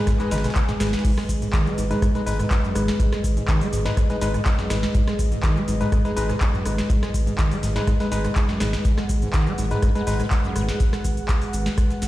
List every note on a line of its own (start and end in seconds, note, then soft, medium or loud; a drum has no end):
0.00 12.08 G#3 medium
0.00 12.08 G#4 medium
0.00 12.08 B4 medium
0.00 1.03 G#5 medium
0.07 0.14 G#2 loud
0.07 kick loud
0.07 cross-stick medium
0.07 snare loud
0.07 closed hi-hat medium
0.07 shaker soft
0.20 0.30 G#3 medium
0.20 0.33 G#3 medium
0.20 0.30 D#4 medium
0.20 0.30 B4 medium
0.20 snare soft
0.20 clap soft
0.20 closed hi-hat soft
0.20 shaker soft
0.31 0.47 G#1 loud
0.31 0.39 B2 medium
0.31 0.46 G#3 medium
0.31 0.46 D#4 medium
0.31 0.46 B4 medium
0.31 snare soft
0.31 snare medium
0.31 closed hi-hat medium
0.31 open hi-hat loud
0.31 shaker medium
0.38 snare medium
0.38 closed hi-hat medium
0.44 0.51 B2 loud
0.44 cross-stick soft
0.44 snare medium
0.44 closed hi-hat medium
0.44 shaker soft
0.50 snare medium
0.50 closed hi-hat medium
0.55 kick loud
0.55 clap loud
0.55 closed hi-hat medium
0.55 shaker soft
0.69 0.72 G#2 loud
0.69 snare soft
0.69 closed hi-hat soft
0.69 shaker soft
0.80 0.96 G#1 loud
0.80 0.87 G#2 medium
0.80 1.03 G#3 medium
0.80 1.03 D#4 medium
0.80 1.03 B4 medium
0.80 cross-stick medium
0.80 snare medium
0.80 closed hi-hat medium
0.80 open hi-hat loud
0.80 shaker medium
0.87 snare medium
0.87 closed hi-hat medium
0.93 snare medium
0.93 closed hi-hat medium
0.93 shaker soft
0.99 snare medium
0.99 closed hi-hat medium
1.05 1.12 G#2 medium
1.05 8.84 D#5 medium
1.05 kick loud
1.05 closed hi-hat medium
1.05 crash medium
1.05 shaker soft
1.18 1.24 G#3 medium
1.18 cross-stick medium
1.18 snare medium
1.18 snare soft
1.18 shaker soft
1.29 1.45 G#1 loud
1.29 kick medium
1.29 closed hi-hat medium
1.29 open hi-hat loud
1.29 shaker medium
1.42 1.48 G#2 medium
1.42 closed hi-hat medium
1.42 shaker soft
1.53 1.68 D#3 medium
1.53 kick loud
1.53 cross-stick soft
1.53 snare loud
1.53 clap loud
1.53 closed hi-hat medium
1.53 shaker soft
1.66 1.73 G#3 loud
1.66 snare soft
1.66 shaker soft
1.78 1.94 G#1 medium
1.78 1.85 G#2 medium
1.78 closed hi-hat medium
1.78 open hi-hat loud
1.78 shaker medium
1.91 1.97 G#2 medium
1.91 2.04 G#3 medium
1.91 2.04 D#4 medium
1.91 2.04 B4 loud
1.91 snare soft
1.91 closed hi-hat medium
1.91 shaker soft
2.02 2.09 G#2 loud
2.02 kick loud
2.02 cross-stick medium
2.02 closed hi-hat medium
2.02 shaker soft
2.15 2.25 G#3 medium
2.15 2.21 G#3 medium
2.15 2.25 D#4 medium
2.15 2.25 B4 medium
2.15 snare soft
2.15 closed hi-hat soft
2.15 shaker soft
2.26 2.42 G#1 medium
2.26 2.34 G#2 medium
2.26 2.41 G#3 medium
2.26 2.41 D#4 medium
2.26 2.41 B4 medium
2.26 snare soft
2.26 open hi-hat medium
2.26 open hi-hat loud
2.26 shaker medium
2.39 2.46 G#2 medium
2.39 cross-stick soft
2.39 closed hi-hat medium
2.39 shaker soft
2.51 kick loud
2.51 snare loud
2.51 clap loud
2.51 closed hi-hat medium
2.51 shaker soft
2.64 2.73 F#2 medium
2.64 snare soft
2.64 shaker soft
2.75 2.91 G#1 medium
2.75 2.82 G#2 medium
2.75 2.98 G#3 medium
2.75 2.98 D#4 medium
2.75 2.98 B4 medium
2.75 cross-stick medium
2.75 closed hi-hat medium
2.75 open hi-hat loud
2.75 shaker medium
2.88 snare medium
2.88 closed hi-hat medium
2.88 shaker soft
3.00 3.07 G#2 medium
3.00 kick loud
3.00 closed hi-hat medium
3.00 shaker soft
3.12 3.19 G#3 medium
3.12 cross-stick medium
3.12 snare soft
3.12 shaker soft
3.24 3.40 G#1 loud
3.24 kick medium
3.24 closed hi-hat medium
3.24 open hi-hat loud
3.24 shaker medium
3.37 3.43 G#2 medium
3.37 closed hi-hat medium
3.37 shaker soft
3.48 3.62 D#3 medium
3.48 kick loud
3.48 cross-stick soft
3.48 snare loud
3.48 clap loud
3.48 closed hi-hat medium
3.48 shaker soft
3.61 3.67 G#3 loud
3.61 snare medium
3.61 open hi-hat medium
3.61 shaker soft
3.73 3.89 G#1 medium
3.73 3.80 G#2 medium
3.73 closed hi-hat medium
3.73 open hi-hat loud
3.73 shaker medium
3.85 3.92 G#2 medium
3.85 3.99 G#3 medium
3.85 3.99 D#4 medium
3.85 3.99 B4 loud
3.85 snare medium
3.85 closed hi-hat medium
3.85 closed hi-hat soft
3.85 shaker soft
3.97 4.04 G#2 loud
3.97 kick loud
3.97 cross-stick medium
3.97 closed hi-hat medium
3.97 shaker soft
4.10 4.16 G#3 medium
4.10 4.20 G#3 medium
4.10 4.20 D#4 medium
4.10 4.20 B4 medium
4.10 snare soft
4.10 closed hi-hat soft
4.10 shaker soft
4.21 4.37 G#1 medium
4.21 4.29 G#2 medium
4.21 4.36 G#3 medium
4.21 4.36 D#4 medium
4.21 4.36 B4 medium
4.21 snare soft
4.21 closed hi-hat medium
4.21 open hi-hat loud
4.21 shaker medium
4.34 4.41 G#2 medium
4.34 cross-stick soft
4.34 closed hi-hat medium
4.34 shaker soft
4.46 kick loud
4.46 snare loud
4.46 clap loud
4.46 closed hi-hat medium
4.46 shaker soft
4.59 4.68 F#2 medium
4.59 snare medium
4.59 snare soft
4.59 shaker soft
4.70 4.86 G#1 medium
4.70 4.77 G#2 medium
4.70 4.93 G#3 medium
4.70 4.93 D#4 medium
4.70 4.93 B4 medium
4.70 cross-stick medium
4.70 snare medium
4.70 closed hi-hat medium
4.70 open hi-hat loud
4.70 shaker medium
4.83 snare medium
4.83 closed hi-hat medium
4.83 shaker soft
4.95 5.02 G#2 medium
4.95 kick loud
4.95 closed hi-hat medium
4.95 shaker soft
5.07 5.14 G#3 medium
5.07 cross-stick medium
5.07 snare medium
5.07 snare soft
5.07 shaker soft
5.19 5.35 G#1 loud
5.19 kick medium
5.19 closed hi-hat medium
5.19 open hi-hat loud
5.19 shaker medium
5.32 5.38 G#2 medium
5.32 closed hi-hat medium
5.32 shaker soft
5.43 5.58 D#3 medium
5.43 kick loud
5.43 cross-stick soft
5.43 snare loud
5.43 clap loud
5.43 closed hi-hat medium
5.43 shaker soft
5.56 5.63 G#3 loud
5.56 snare soft
5.56 shaker soft
5.68 5.84 G#1 medium
5.68 5.75 G#2 medium
5.68 closed hi-hat medium
5.68 open hi-hat loud
5.68 shaker medium
5.80 5.87 G#2 medium
5.80 5.94 G#3 medium
5.80 5.94 D#4 medium
5.80 5.94 B4 loud
5.80 snare soft
5.80 closed hi-hat medium
5.80 shaker soft
5.92 5.99 G#2 loud
5.92 kick loud
5.92 cross-stick medium
5.92 closed hi-hat medium
5.92 shaker soft
6.05 6.11 G#3 medium
6.05 6.15 G#3 medium
6.05 6.15 D#4 medium
6.05 6.15 B4 medium
6.05 snare medium
6.05 closed hi-hat soft
6.05 shaker soft
6.17 6.32 G#1 medium
6.17 6.24 G#2 medium
6.17 6.31 G#3 medium
6.17 6.31 D#4 medium
6.17 6.31 B4 loud
6.17 snare loud
6.17 closed hi-hat medium
6.17 open hi-hat loud
6.17 shaker medium
6.29 6.36 G#2 medium
6.29 cross-stick soft
6.29 snare soft
6.29 closed hi-hat medium
6.29 shaker soft
6.41 kick loud
6.41 clap loud
6.41 closed hi-hat medium
6.41 shaker soft
6.54 6.63 F#2 medium
6.54 snare soft
6.54 shaker soft
6.65 6.81 G#1 medium
6.65 6.72 G#2 medium
6.65 6.88 G#3 medium
6.65 6.88 D#4 medium
6.65 6.88 B4 medium
6.65 cross-stick medium
6.65 closed hi-hat medium
6.65 open hi-hat loud
6.65 shaker medium
6.78 snare soft
6.78 snare medium
6.78 closed hi-hat medium
6.78 shaker soft
6.90 6.97 G#2 medium
6.90 kick loud
6.90 closed hi-hat medium
6.90 shaker soft
7.03 7.09 G#3 medium
7.03 cross-stick medium
7.03 snare soft
7.03 shaker soft
7.14 7.30 G#1 loud
7.14 kick medium
7.14 closed hi-hat medium
7.14 open hi-hat loud
7.14 shaker medium
7.27 7.33 G#2 medium
7.27 closed hi-hat medium
7.27 shaker soft
7.38 7.53 D#3 medium
7.38 kick loud
7.38 cross-stick soft
7.38 snare loud
7.38 clap loud
7.38 closed hi-hat medium
7.38 shaker soft
7.51 7.58 G#3 loud
7.51 snare medium
7.51 open hi-hat medium
7.51 shaker soft
7.63 7.79 G#1 medium
7.63 7.70 G#2 medium
7.63 snare loud
7.63 closed hi-hat medium
7.63 open hi-hat loud
7.63 shaker medium
7.76 7.82 G#2 medium
7.76 7.89 G#3 medium
7.76 7.89 D#4 medium
7.76 7.89 B4 loud
7.76 snare soft
7.76 snare medium
7.76 closed hi-hat soft
7.76 shaker soft
7.87 7.94 G#2 loud
7.87 kick loud
7.87 cross-stick medium
7.87 closed hi-hat medium
7.87 shaker soft
8.00 8.10 G#3 medium
8.00 8.07 G#3 medium
8.00 8.10 D#4 medium
8.00 8.10 B4 medium
8.00 snare loud
8.00 closed hi-hat medium
8.00 closed hi-hat soft
8.00 shaker soft
8.12 8.28 G#1 medium
8.12 8.19 G#2 medium
8.12 8.26 G#3 medium
8.12 8.26 D#4 medium
8.12 8.26 B4 medium
8.12 snare soft
8.12 open hi-hat loud
8.12 shaker medium
8.24 8.31 G#2 medium
8.24 cross-stick soft
8.24 closed hi-hat soft
8.24 closed hi-hat medium
8.24 shaker soft
8.36 kick loud
8.36 snare loud
8.36 clap loud
8.36 closed hi-hat medium
8.36 shaker soft
8.49 8.59 F#2 medium
8.49 snare soft
8.49 shaker soft
8.60 8.76 G#1 medium
8.60 8.68 G#2 medium
8.60 8.83 G#3 medium
8.60 8.83 D#4 medium
8.60 8.83 B4 medium
8.60 cross-stick medium
8.60 snare medium
8.60 closed hi-hat medium
8.60 open hi-hat loud
8.60 shaker medium
8.73 snare medium
8.73 closed hi-hat medium
8.73 shaker soft
8.85 8.92 G#2 medium
8.85 12.08 F#5 medium
8.85 kick loud
8.85 closed hi-hat medium
8.85 shaker soft
8.98 9.04 G#3 medium
8.98 cross-stick medium
8.98 snare soft
8.98 snare medium
8.98 shaker soft
9.09 9.25 G#1 loud
9.09 kick medium
9.09 closed hi-hat medium
9.09 open hi-hat loud
9.09 shaker medium
9.22 9.29 G#2 medium
9.22 closed hi-hat medium
9.22 shaker soft
9.33 9.48 D#3 medium
9.33 kick loud
9.33 cross-stick soft
9.33 snare loud
9.33 clap loud
9.33 closed hi-hat medium
9.33 shaker soft
9.47 9.53 G#3 loud
9.47 snare soft
9.47 shaker soft
9.58 9.74 G#1 medium
9.58 9.65 G#2 medium
9.58 closed hi-hat medium
9.58 open hi-hat loud
9.58 shaker medium
9.71 9.77 G#2 medium
9.71 9.85 G#3 medium
9.71 9.85 D#4 medium
9.71 9.85 B4 loud
9.71 snare soft
9.71 closed hi-hat soft
9.71 shaker soft
9.82 9.90 G#2 loud
9.82 kick loud
9.82 cross-stick medium
9.82 closed hi-hat medium
9.82 shaker soft
9.95 10.02 G#3 medium
9.95 10.05 G#3 medium
9.95 10.05 D#4 medium
9.95 10.05 B4 medium
9.95 snare soft
9.95 closed hi-hat soft
9.95 shaker soft
10.07 10.23 G#1 medium
10.07 10.14 G#2 medium
10.07 10.22 G#3 medium
10.07 10.22 D#4 medium
10.07 10.22 B4 medium
10.07 snare soft
10.07 open hi-hat loud
10.07 open hi-hat medium
10.07 shaker medium
10.20 10.26 G#2 medium
10.20 cross-stick soft
10.20 closed hi-hat soft
10.20 shaker soft
10.31 kick loud
10.31 snare loud
10.31 clap loud
10.31 closed hi-hat medium
10.31 shaker soft
10.44 10.54 F#2 medium
10.44 snare soft
10.44 shaker soft
10.56 10.72 G#1 medium
10.56 10.63 G#2 medium
10.56 10.78 G#3 medium
10.56 10.78 D#4 medium
10.56 10.78 B4 medium
10.56 cross-stick medium
10.56 closed hi-hat medium
10.56 open hi-hat loud
10.56 shaker medium
10.69 snare medium
10.69 closed hi-hat medium
10.69 shaker soft
10.80 kick loud
10.80 closed hi-hat medium
10.80 shaker soft
10.93 cross-stick medium
10.93 snare soft
10.93 shaker soft
11.04 11.20 G#1 loud
11.04 kick medium
11.04 closed hi-hat medium
11.04 open hi-hat loud
11.04 shaker medium
11.17 closed hi-hat medium
11.17 shaker soft
11.29 kick loud
11.29 cross-stick soft
11.29 snare loud
11.29 clap loud
11.29 closed hi-hat medium
11.29 shaker soft
11.42 snare medium
11.42 open hi-hat medium
11.42 shaker soft
11.53 11.69 G#1 medium
11.53 closed hi-hat medium
11.53 open hi-hat loud
11.53 shaker medium
11.66 snare medium
11.66 closed hi-hat medium
11.66 closed hi-hat soft
11.66 shaker soft
11.78 kick loud
11.78 cross-stick medium
11.78 closed hi-hat medium
11.78 shaker soft
11.90 snare soft
11.90 closed hi-hat soft
11.90 shaker soft
12.02 12.08 G#1 medium
12.02 snare soft
12.02 closed hi-hat medium
12.02 open hi-hat loud
12.02 shaker medium